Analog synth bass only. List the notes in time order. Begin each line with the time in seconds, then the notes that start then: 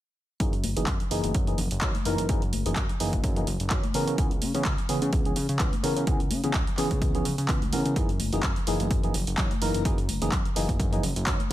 0.40 F#2
0.64 F#1
0.77 F#1
0.87 F#2
1.11 F#1
1.24 F#1
1.35 F#2
1.58 F#1
1.71 F#1
1.82 F#2
2.06 F#1
2.18 F#1
2.29 F#2
2.53 F#1
2.66 F#1
2.76 F#2
3.00 F#1
3.13 F#1
3.24 F#2
3.47 F#1
3.60 F#1
3.71 F#2
3.94 C#3
4.07 C#3
4.18 C#2
4.42 C#3
4.54 C#3
4.65 C#2
4.89 C#3
5.02 C#3
5.13 C#2
5.36 C#3
5.49 C#3
5.60 C#2
5.83 C#3
5.96 C#3
6.07 C#2
6.31 C#3
6.44 C#3
6.54 C#2
6.78 C#3
6.91 C#3
7.02 C#2
7.25 C#3
7.38 C#3
7.49 C#2
7.73 C#3
7.86 C#3
7.96 F#2
8.20 F#1
8.32 F#1
8.43 F#2
8.67 F#1
8.80 F#1
8.91 F#2
9.14 F#1
9.27 F#1
9.38 F#2
9.61 F#1
9.74 F#1
9.85 F#2
10.09 F#1
10.21 F#1
10.32 F#2
10.56 F#1
10.69 F#1
10.80 F#2
11.03 F#1
11.16 F#1
11.27 F#2